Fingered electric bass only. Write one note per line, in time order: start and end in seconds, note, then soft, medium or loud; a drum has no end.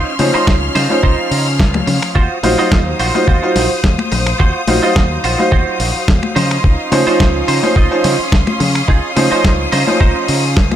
0.19 0.30 C#3 medium
0.34 muted fingered electric bass stroke soft
0.47 0.68 C#2 medium
0.75 0.86 C#3 medium
1.03 1.14 C#2 medium
1.18 muted fingered electric bass stroke soft
1.31 1.61 C#3 medium
1.59 1.80 C#2 medium
1.87 1.98 C#3 medium
2.15 2.26 D#2 medium
2.43 2.54 A#1 medium
2.58 muted fingered electric bass stroke soft
2.72 2.92 D#2 medium
2.99 3.10 A#1 medium
3.28 3.38 D#2 medium
3.56 3.66 A#1 medium
3.70 muted fingered electric bass stroke soft
3.84 3.95 D#2 medium
4.11 4.32 A#1 medium
4.40 4.51 D#2 loud
4.67 4.78 A#1 medium
4.96 5.17 D#2 medium
5.24 5.35 A#1 medium
5.52 5.63 D#2 medium
5.80 5.91 A#1 loud
5.95 muted fingered electric bass stroke soft
6.08 6.19 D#2 medium
6.36 6.57 C#3 loud
6.64 6.75 C#2 medium
6.92 7.03 C#3 medium
7.07 muted fingered electric bass stroke soft
7.20 7.41 C#2 medium
7.48 7.59 C#3 medium
7.76 7.87 C#2 medium
8.04 8.15 C#3 loud
8.19 muted fingered electric bass stroke soft
8.32 8.43 C#2 medium
8.60 8.81 C#3 loud
8.88 8.99 C#2 medium
9.17 9.27 C#3 medium
9.32 muted fingered electric bass stroke soft
9.44 9.65 C#2 medium
9.72 9.83 C#3 medium
10.01 10.11 C#2 medium
10.16 muted fingered electric bass stroke soft
10.29 10.58 C#3 loud
10.57 10.76 C#2 medium